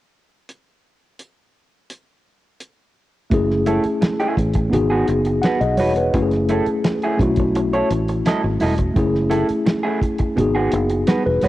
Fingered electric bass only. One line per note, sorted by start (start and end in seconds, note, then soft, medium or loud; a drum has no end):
3.31 3.78 F#1 medium
3.85 muted fingered electric bass stroke soft
4.38 4.68 A1 medium
4.73 5.03 G#1 medium
5.08 5.39 F#1 medium
5.61 5.76 B1 medium
5.79 6.09 E1 medium
6.14 6.60 F#1 loud
6.67 muted fingered electric bass stroke soft
7.20 7.81 B1 medium
7.91 8.21 A1 medium
8.44 8.59 G#1 medium
8.62 8.92 E1 medium
8.96 9.42 F#1 loud
9.50 muted fingered electric bass stroke soft
10.38 10.68 G#1 medium
10.73 11.04 F#1 medium
11.26 11.41 E1 medium
11.43 11.48 E1 medium